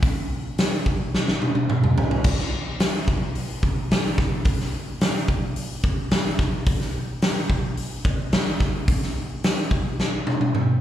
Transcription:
0.03 kick, open hi-hat
0.58 snare, open hi-hat
0.86 kick
1.15 snare
1.28 snare
1.42 high tom
1.55 high tom
1.70 mid tom
1.84 mid tom
1.98 floor tom
2.11 floor tom
2.24 kick, crash
2.39 snare
2.80 snare, open hi-hat
3.08 kick
3.35 open hi-hat
3.63 kick
3.91 snare, open hi-hat
4.18 kick, snare
4.44 kick, open hi-hat
4.60 snare
5.01 snare, open hi-hat
5.28 kick
5.56 open hi-hat
5.84 kick
6.11 snare, open hi-hat
6.39 kick, snare
6.66 kick, open hi-hat
6.81 snare
7.22 snare, open hi-hat
7.50 kick
7.77 open hi-hat
8.05 kick
8.32 snare, open hi-hat
8.60 kick, snare
8.88 kick, open hi-hat
9.03 snare
9.44 snare, open hi-hat
9.71 kick
10.00 snare
10.27 high tom
10.41 high tom
10.55 mid tom

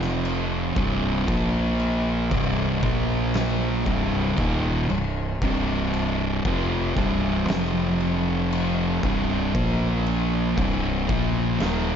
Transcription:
Already playing: F1 F2 C3 F3
0.01 snare
0.25 crash
0.76 C1 C2 G2 C3, kick, crash
1.27 A#1 A#2 F3 A#3, kick, crash
1.79 crash
2.31 C1 C2 G2 C3, kick, crash
2.83 A#1 A#2 F3 A#3, kick, crash
3.34 snare, crash
3.85 C1 C2 G2 C3, kick, crash
4.37 D#1 D#2 A#2 D#3, kick, crash
4.89 C1 C2 G2, crash
5.42 C1 C2 G2 C3, kick, crash
5.93 crash
6.45 F1 F2 C3 F3, kick, crash
6.97 C1 C2 G2 C3, kick, crash
7.48 F1 F2 C3 F3, snare, crash
8.00 crash
8.52 crash
9.03 C1 C2 G2 C3, kick, crash
9.54 A#1 A#2 F3 A#3, kick, crash
10.06 crash
10.57 C1 C2 G2 C3, kick, crash
11.08 A#1 A#2 F3 A#3, kick, crash
11.60 D#1 D#2 A#2 D#3, snare, crash

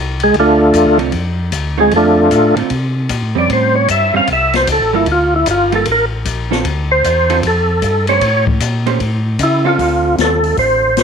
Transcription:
Already playing: C2
0.20 G#3 G#4, ride
0.34 D2, kick, ride
0.40 A3 D4 F4 A4
0.74 E2, kick, hi-hat pedal, ride
0.85 D2
0.98 C2 D3 A3 C4 F4, ride
1.12 F2, kick, ride
1.52 D2, kick, hi-hat pedal, ride
1.78 D3 G#3 A3 C4 F4 G#4
1.91 F2, kick, ride
1.96 A3 D4 F4 A4
2.31 A2, kick, hi-hat pedal, ride
2.56 A2 D3 A3 C4 F4, ride
2.70 C3, kick, ride
3.09 A#2, kick, hi-hat pedal, ride
3.22 A2
3.35 F2 G3 C4 C#4 D5
3.49 A2 C5, kick, ride
3.75 C#5
3.88 G2 E5, kick, hi-hat pedal, ride
4.14 G2 G3 C4 C#4 F5
4.27 C2, kick, ride
4.33 E5
4.53 C5, snare, ride
4.67 C#2, kick, hi-hat pedal, ride
4.72 A4
4.80 A1
4.93 G1 G3 A#3 E4 F4 A4
5.06 D2, kick, ride
5.12 F4
5.36 E4
5.46 G1, kick, hi-hat pedal, ride
5.51 F4
5.72 G3 A#3 F4 A4, ride
5.86 A1, kick, ride
5.92 A#4
6.25 A#1, kick, hi-hat pedal, ride
6.51 D3 C4 F4 A4, snare
6.65 D2, kick, ride
6.92 C5
7.04 E2, kick, hi-hat pedal, ride
7.30 D3 C4 F4 A4, ride
7.43 F2 A4, kick, ride
7.82 G2, kick, hi-hat pedal, ride
8.07 A3 C#4 G4 C5 C#5, ride
8.21 A2, kick, ride
8.47 kick
8.60 A#2, kick, hi-hat pedal, ride
8.86 A3 C#4 G4 C5, ride
9.00 A2, kick, ride
9.39 C#3, kick, hi-hat pedal, ride
9.43 E4
9.65 D3 C4 F4 A4
9.78 D2 D3 C4 F4 A4, kick, open hi-hat
10.18 D#2 A4, snare, closed hi-hat
10.44 open hi-hat
10.57 A1 C5, kick, open hi-hat
10.97 snare, closed hi-hat

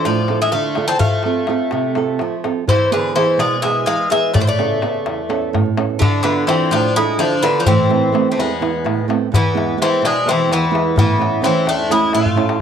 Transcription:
Already playing: D4 F4 A4
0.05 A2 F3 D5, darbuka tek
0.28 D4 F4 A4, darbuka tek
0.42 G#3 E5
0.52 D3 A3 F5, darbuka tek
0.75 D4 F4 A4, darbuka tek
0.88 C4 A5
0.99 F3 A3 F5, darbuka dum
1.11 darbuka tek
1.23 C4 F4 A4, darbuka tek
1.47 C4 F4 A4, darbuka tek
1.58 darbuka tek
1.71 C3, darbuka tek
1.95 C4 F4 A4, darbuka tek
2.19 F3, darbuka tek
2.44 C4 F4 A4, darbuka tek
2.68 E3 C5, darbuka dum
2.80 darbuka tek
2.91 D3 B3 E4 G#4 B4, darbuka tek
3.15 E3 B3 E4 G#4 C5, darbuka tek
3.28 darbuka tek
3.38 B2 G#3 D5, darbuka tek
3.62 G#3 B3 E4 G#4 E5, darbuka tek
3.86 E3 G#3 F5, darbuka tek
4.10 G#3 B3 E4 G#4 E5, darbuka tek
4.33 A2 A3 D5, darbuka dum
4.40 D3 C5
4.47 A3 D5, darbuka tek
4.59 C#3 B3 A4, darbuka tek
4.82 C#3 B3 A4, darbuka tek
4.94 darbuka tek
5.06 E2, darbuka tek
5.29 B3 C#4 A4, darbuka tek
5.42 darbuka tek
5.53 A2, darbuka tek, darbuka dum
5.66 darbuka tek
5.77 B3 C#4 A4, darbuka tek
5.90 darbuka tek
5.99 D3 A3, darbuka dum
6.23 D3 B3 D4 F4 A4, darbuka tek
6.47 E3 C4 D4 F4 A4, darbuka tek
6.71 A2 F3 D4, darbuka tek
6.96 G#3 D4 E4 F4 A4, darbuka tek
7.19 D3 F3 D4, darbuka tek
7.32 darbuka tek
7.43 D3 B3 D4 F4 A4, darbuka tek
7.60 F3 D4
7.66 A2 E3 C4, darbuka dum
7.89 A3 C4 B4, darbuka tek
8.12 A3 B3 C4, darbuka tek
8.32 C3 A3
8.38 E2 G#3 B3, darbuka tek
8.61 E3 B3 E4, darbuka tek
8.84 A2, darbuka tek
8.99 darbuka tek
9.08 A3 B3 C4, darbuka tek
9.32 E2 E3 B3, darbuka dum
9.54 G#3 B3 E4, darbuka tek
9.77 G#3 B3 E4
9.82 E3 C4, darbuka tek
10.02 B2 D4, darbuka tek
10.06 G#3
10.26 G#3 B3 C4 E4, darbuka tek
10.30 E3
10.48 E2, darbuka tek
10.53 E3 B3
10.63 darbuka tek
10.71 G#3 B3 E4
10.75 darbuka tek
10.96 A2 E3 B3, darbuka dum
11.18 A3 C#4 E4, darbuka tek
11.34 darbuka tek
11.42 E3 A3 C4 C#4 E4, darbuka tek
11.66 E2 A3 D4, darbuka tek
11.80 darbuka tek
11.90 G#3 A3 C#4 E4, darbuka tek
12.02 darbuka tek
12.13 A2 A3 F4, darbuka tek
12.26 darbuka dum
12.36 A3 C#4 E4, darbuka tek
12.49 darbuka tek

